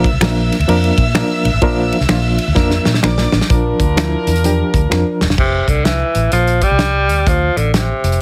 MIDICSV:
0, 0, Header, 1, 7, 480
1, 0, Start_track
1, 0, Tempo, 470588
1, 1656, Time_signature, 4, 2, 24, 8
1, 8382, End_track
2, 0, Start_track
2, 0, Title_t, "Violin section"
2, 0, Program_c, 0, 48
2, 0, Note_on_c, 0, 76, 84
2, 0, Note_on_c, 0, 88, 87
2, 3057, Note_off_c, 0, 76, 0
2, 3058, Note_off_c, 0, 88, 0
2, 3098, Note_on_c, 0, 86, 86
2, 3104, Note_on_c, 0, 74, 79
2, 3565, Note_off_c, 0, 86, 0
2, 3568, Note_off_c, 0, 74, 0
2, 8382, End_track
3, 0, Start_track
3, 0, Title_t, "Horn section"
3, 0, Program_c, 1, 61
3, 3585, Note_on_c, 1, 65, 75
3, 3587, Note_on_c, 1, 70, 86
3, 3588, Note_on_c, 1, 62, 80
3, 5288, Note_off_c, 1, 65, 0
3, 5289, Note_off_c, 1, 62, 0
3, 5289, Note_off_c, 1, 70, 0
3, 8382, End_track
4, 0, Start_track
4, 0, Title_t, "Reed electric piano"
4, 0, Program_c, 2, 4
4, 209, Note_on_c, 2, 53, 89
4, 213, Note_on_c, 2, 58, 78
4, 219, Note_on_c, 2, 62, 76
4, 229, Note_on_c, 2, 70, 95
4, 566, Note_off_c, 2, 53, 0
4, 568, Note_off_c, 2, 58, 0
4, 571, Note_off_c, 2, 62, 0
4, 576, Note_off_c, 2, 70, 0
4, 691, Note_on_c, 2, 53, 95
4, 693, Note_on_c, 2, 58, 84
4, 701, Note_on_c, 2, 62, 89
4, 707, Note_on_c, 2, 70, 100
4, 1046, Note_off_c, 2, 53, 0
4, 1047, Note_off_c, 2, 58, 0
4, 1051, Note_off_c, 2, 62, 0
4, 1054, Note_off_c, 2, 70, 0
4, 1171, Note_on_c, 2, 53, 87
4, 1176, Note_on_c, 2, 58, 87
4, 1183, Note_on_c, 2, 62, 89
4, 1186, Note_on_c, 2, 70, 98
4, 1525, Note_off_c, 2, 53, 0
4, 1528, Note_off_c, 2, 58, 0
4, 1531, Note_off_c, 2, 62, 0
4, 1533, Note_off_c, 2, 70, 0
4, 1650, Note_on_c, 2, 53, 126
4, 1662, Note_on_c, 2, 58, 112
4, 1662, Note_on_c, 2, 62, 115
4, 1667, Note_on_c, 2, 70, 127
4, 2004, Note_off_c, 2, 53, 0
4, 2010, Note_off_c, 2, 58, 0
4, 2010, Note_off_c, 2, 62, 0
4, 2013, Note_off_c, 2, 70, 0
4, 2130, Note_on_c, 2, 53, 90
4, 2134, Note_on_c, 2, 58, 81
4, 2146, Note_on_c, 2, 62, 77
4, 2146, Note_on_c, 2, 65, 99
4, 2484, Note_off_c, 2, 53, 0
4, 2485, Note_off_c, 2, 58, 0
4, 2491, Note_off_c, 2, 62, 0
4, 2492, Note_off_c, 2, 65, 0
4, 2600, Note_on_c, 2, 53, 87
4, 2603, Note_on_c, 2, 58, 85
4, 2611, Note_on_c, 2, 62, 84
4, 2613, Note_on_c, 2, 70, 97
4, 2958, Note_off_c, 2, 53, 0
4, 2960, Note_off_c, 2, 58, 0
4, 2964, Note_off_c, 2, 62, 0
4, 2965, Note_off_c, 2, 70, 0
4, 3087, Note_on_c, 2, 53, 89
4, 3095, Note_on_c, 2, 58, 79
4, 3098, Note_on_c, 2, 62, 78
4, 3104, Note_on_c, 2, 70, 93
4, 3441, Note_off_c, 2, 53, 0
4, 3445, Note_off_c, 2, 58, 0
4, 3447, Note_off_c, 2, 62, 0
4, 3450, Note_off_c, 2, 70, 0
4, 3562, Note_on_c, 2, 53, 83
4, 3569, Note_on_c, 2, 62, 70
4, 3576, Note_on_c, 2, 70, 87
4, 3919, Note_off_c, 2, 53, 0
4, 3922, Note_off_c, 2, 62, 0
4, 3926, Note_off_c, 2, 70, 0
4, 4043, Note_on_c, 2, 53, 81
4, 4056, Note_on_c, 2, 62, 70
4, 4063, Note_on_c, 2, 64, 80
4, 4399, Note_off_c, 2, 53, 0
4, 4406, Note_off_c, 2, 62, 0
4, 4409, Note_off_c, 2, 64, 0
4, 4528, Note_on_c, 2, 53, 83
4, 4537, Note_on_c, 2, 62, 75
4, 4545, Note_on_c, 2, 67, 88
4, 4882, Note_off_c, 2, 53, 0
4, 4887, Note_off_c, 2, 62, 0
4, 4890, Note_off_c, 2, 67, 0
4, 4999, Note_on_c, 2, 53, 83
4, 5013, Note_on_c, 2, 62, 75
4, 5015, Note_on_c, 2, 70, 88
4, 5358, Note_off_c, 2, 53, 0
4, 5365, Note_off_c, 2, 62, 0
4, 5366, Note_off_c, 2, 70, 0
4, 8382, End_track
5, 0, Start_track
5, 0, Title_t, "Tenor saxophone"
5, 0, Program_c, 3, 66
5, 5502, Note_on_c, 3, 48, 87
5, 5798, Note_on_c, 3, 50, 77
5, 5813, Note_off_c, 3, 48, 0
5, 5964, Note_on_c, 3, 52, 83
5, 5979, Note_off_c, 3, 50, 0
5, 6447, Note_off_c, 3, 52, 0
5, 6453, Note_on_c, 3, 53, 95
5, 6759, Note_on_c, 3, 55, 104
5, 6774, Note_off_c, 3, 53, 0
5, 7425, Note_on_c, 3, 53, 88
5, 7440, Note_off_c, 3, 55, 0
5, 7725, Note_on_c, 3, 50, 76
5, 7740, Note_off_c, 3, 53, 0
5, 7892, Note_off_c, 3, 50, 0
5, 7898, Note_on_c, 3, 48, 69
5, 8382, Note_off_c, 3, 48, 0
5, 8382, End_track
6, 0, Start_track
6, 0, Title_t, "Fingered electric bass"
6, 0, Program_c, 4, 33
6, 129, Note_on_c, 4, 36, 88
6, 194, Note_off_c, 4, 36, 0
6, 210, Note_on_c, 4, 34, 103
6, 496, Note_off_c, 4, 34, 0
6, 606, Note_on_c, 4, 38, 94
6, 671, Note_off_c, 4, 38, 0
6, 697, Note_on_c, 4, 41, 101
6, 916, Note_off_c, 4, 41, 0
6, 999, Note_on_c, 4, 46, 101
6, 1236, Note_off_c, 4, 46, 0
6, 1478, Note_on_c, 4, 34, 94
6, 1542, Note_off_c, 4, 34, 0
6, 1565, Note_on_c, 4, 33, 85
6, 1630, Note_off_c, 4, 33, 0
6, 2046, Note_on_c, 4, 36, 85
6, 2110, Note_off_c, 4, 36, 0
6, 2135, Note_on_c, 4, 34, 106
6, 2417, Note_off_c, 4, 34, 0
6, 2525, Note_on_c, 4, 38, 104
6, 2589, Note_off_c, 4, 38, 0
6, 2612, Note_on_c, 4, 41, 101
6, 2832, Note_off_c, 4, 41, 0
6, 2919, Note_on_c, 4, 46, 102
6, 3046, Note_off_c, 4, 46, 0
6, 3094, Note_on_c, 4, 34, 101
6, 3313, Note_off_c, 4, 34, 0
6, 3400, Note_on_c, 4, 33, 92
6, 3462, Note_off_c, 4, 33, 0
6, 3573, Note_on_c, 4, 34, 93
6, 3792, Note_off_c, 4, 34, 0
6, 3871, Note_on_c, 4, 38, 86
6, 4219, Note_off_c, 4, 38, 0
6, 4357, Note_on_c, 4, 40, 87
6, 4703, Note_off_c, 4, 40, 0
6, 4832, Note_on_c, 4, 38, 83
6, 4961, Note_off_c, 4, 38, 0
6, 5013, Note_on_c, 4, 41, 86
6, 5122, Note_off_c, 4, 41, 0
6, 5318, Note_on_c, 4, 27, 94
6, 5381, Note_off_c, 4, 27, 0
6, 5404, Note_on_c, 4, 28, 83
6, 5468, Note_off_c, 4, 28, 0
6, 5489, Note_on_c, 4, 29, 90
6, 5710, Note_off_c, 4, 29, 0
6, 5792, Note_on_c, 4, 36, 77
6, 6141, Note_off_c, 4, 36, 0
6, 6275, Note_on_c, 4, 33, 74
6, 6404, Note_off_c, 4, 33, 0
6, 6452, Note_on_c, 4, 34, 86
6, 6737, Note_off_c, 4, 34, 0
6, 6846, Note_on_c, 4, 36, 71
6, 7244, Note_off_c, 4, 36, 0
6, 7244, Note_on_c, 4, 38, 80
6, 7370, Note_off_c, 4, 38, 0
6, 7411, Note_on_c, 4, 38, 98
6, 7633, Note_off_c, 4, 38, 0
6, 7717, Note_on_c, 4, 33, 69
6, 8066, Note_off_c, 4, 33, 0
6, 8198, Note_on_c, 4, 29, 78
6, 8327, Note_off_c, 4, 29, 0
6, 8382, End_track
7, 0, Start_track
7, 0, Title_t, "Drums"
7, 45, Note_on_c, 9, 36, 95
7, 56, Note_on_c, 9, 51, 54
7, 147, Note_off_c, 9, 36, 0
7, 158, Note_off_c, 9, 51, 0
7, 215, Note_on_c, 9, 26, 102
7, 227, Note_on_c, 9, 51, 86
7, 229, Note_on_c, 9, 38, 123
7, 317, Note_off_c, 9, 26, 0
7, 329, Note_off_c, 9, 51, 0
7, 331, Note_off_c, 9, 38, 0
7, 534, Note_on_c, 9, 51, 66
7, 536, Note_on_c, 9, 38, 34
7, 616, Note_off_c, 9, 51, 0
7, 616, Note_on_c, 9, 51, 52
7, 638, Note_off_c, 9, 38, 0
7, 700, Note_off_c, 9, 51, 0
7, 700, Note_on_c, 9, 51, 91
7, 802, Note_off_c, 9, 51, 0
7, 854, Note_on_c, 9, 51, 43
7, 956, Note_off_c, 9, 51, 0
7, 996, Note_on_c, 9, 36, 100
7, 998, Note_on_c, 9, 51, 70
7, 1098, Note_off_c, 9, 36, 0
7, 1100, Note_off_c, 9, 51, 0
7, 1171, Note_on_c, 9, 38, 127
7, 1171, Note_on_c, 9, 51, 73
7, 1175, Note_on_c, 9, 26, 98
7, 1273, Note_off_c, 9, 38, 0
7, 1273, Note_off_c, 9, 51, 0
7, 1277, Note_off_c, 9, 26, 0
7, 1479, Note_on_c, 9, 51, 69
7, 1581, Note_off_c, 9, 51, 0
7, 1649, Note_on_c, 9, 51, 77
7, 1652, Note_on_c, 9, 36, 127
7, 1751, Note_off_c, 9, 51, 0
7, 1754, Note_off_c, 9, 36, 0
7, 1963, Note_on_c, 9, 51, 57
7, 2047, Note_on_c, 9, 38, 38
7, 2065, Note_off_c, 9, 51, 0
7, 2128, Note_on_c, 9, 51, 89
7, 2130, Note_off_c, 9, 38, 0
7, 2130, Note_on_c, 9, 38, 114
7, 2132, Note_on_c, 9, 26, 102
7, 2230, Note_off_c, 9, 51, 0
7, 2232, Note_off_c, 9, 38, 0
7, 2234, Note_off_c, 9, 26, 0
7, 2432, Note_on_c, 9, 51, 73
7, 2534, Note_off_c, 9, 51, 0
7, 2607, Note_on_c, 9, 38, 67
7, 2612, Note_on_c, 9, 36, 105
7, 2709, Note_off_c, 9, 38, 0
7, 2714, Note_off_c, 9, 36, 0
7, 2759, Note_on_c, 9, 38, 59
7, 2861, Note_off_c, 9, 38, 0
7, 2911, Note_on_c, 9, 38, 79
7, 3002, Note_off_c, 9, 38, 0
7, 3002, Note_on_c, 9, 38, 68
7, 3088, Note_off_c, 9, 38, 0
7, 3088, Note_on_c, 9, 38, 96
7, 3097, Note_on_c, 9, 26, 98
7, 3190, Note_off_c, 9, 38, 0
7, 3199, Note_off_c, 9, 26, 0
7, 3242, Note_on_c, 9, 38, 86
7, 3344, Note_off_c, 9, 38, 0
7, 3391, Note_on_c, 9, 38, 111
7, 3482, Note_off_c, 9, 38, 0
7, 3482, Note_on_c, 9, 38, 93
7, 3567, Note_on_c, 9, 42, 86
7, 3571, Note_on_c, 9, 36, 116
7, 3584, Note_off_c, 9, 38, 0
7, 3669, Note_off_c, 9, 42, 0
7, 3673, Note_off_c, 9, 36, 0
7, 3873, Note_on_c, 9, 36, 91
7, 3877, Note_on_c, 9, 42, 66
7, 3975, Note_off_c, 9, 36, 0
7, 3979, Note_off_c, 9, 42, 0
7, 4052, Note_on_c, 9, 42, 104
7, 4053, Note_on_c, 9, 38, 112
7, 4057, Note_on_c, 9, 26, 96
7, 4154, Note_off_c, 9, 42, 0
7, 4155, Note_off_c, 9, 38, 0
7, 4159, Note_off_c, 9, 26, 0
7, 4356, Note_on_c, 9, 42, 81
7, 4443, Note_off_c, 9, 42, 0
7, 4443, Note_on_c, 9, 42, 58
7, 4532, Note_off_c, 9, 42, 0
7, 4532, Note_on_c, 9, 42, 103
7, 4634, Note_off_c, 9, 42, 0
7, 4833, Note_on_c, 9, 36, 91
7, 4836, Note_on_c, 9, 42, 73
7, 4935, Note_off_c, 9, 36, 0
7, 4938, Note_off_c, 9, 42, 0
7, 5011, Note_on_c, 9, 38, 54
7, 5016, Note_on_c, 9, 26, 88
7, 5113, Note_off_c, 9, 38, 0
7, 5118, Note_off_c, 9, 26, 0
7, 5316, Note_on_c, 9, 38, 90
7, 5408, Note_off_c, 9, 38, 0
7, 5408, Note_on_c, 9, 38, 83
7, 5487, Note_on_c, 9, 49, 78
7, 5489, Note_on_c, 9, 36, 107
7, 5510, Note_off_c, 9, 38, 0
7, 5589, Note_off_c, 9, 49, 0
7, 5591, Note_off_c, 9, 36, 0
7, 5791, Note_on_c, 9, 36, 78
7, 5799, Note_on_c, 9, 42, 57
7, 5893, Note_off_c, 9, 36, 0
7, 5901, Note_off_c, 9, 42, 0
7, 5969, Note_on_c, 9, 42, 82
7, 5971, Note_on_c, 9, 38, 101
7, 6071, Note_off_c, 9, 42, 0
7, 6073, Note_off_c, 9, 38, 0
7, 6271, Note_on_c, 9, 42, 72
7, 6373, Note_off_c, 9, 42, 0
7, 6444, Note_on_c, 9, 42, 99
7, 6546, Note_off_c, 9, 42, 0
7, 6603, Note_on_c, 9, 42, 44
7, 6705, Note_off_c, 9, 42, 0
7, 6748, Note_on_c, 9, 42, 65
7, 6749, Note_on_c, 9, 36, 72
7, 6850, Note_off_c, 9, 42, 0
7, 6851, Note_off_c, 9, 36, 0
7, 6924, Note_on_c, 9, 38, 100
7, 6925, Note_on_c, 9, 42, 76
7, 7026, Note_off_c, 9, 38, 0
7, 7027, Note_off_c, 9, 42, 0
7, 7235, Note_on_c, 9, 42, 64
7, 7337, Note_off_c, 9, 42, 0
7, 7411, Note_on_c, 9, 36, 107
7, 7413, Note_on_c, 9, 42, 80
7, 7513, Note_off_c, 9, 36, 0
7, 7515, Note_off_c, 9, 42, 0
7, 7724, Note_on_c, 9, 42, 55
7, 7826, Note_off_c, 9, 42, 0
7, 7894, Note_on_c, 9, 42, 90
7, 7896, Note_on_c, 9, 38, 104
7, 7996, Note_off_c, 9, 42, 0
7, 7998, Note_off_c, 9, 38, 0
7, 8201, Note_on_c, 9, 42, 72
7, 8285, Note_off_c, 9, 42, 0
7, 8285, Note_on_c, 9, 42, 52
7, 8382, Note_off_c, 9, 42, 0
7, 8382, End_track
0, 0, End_of_file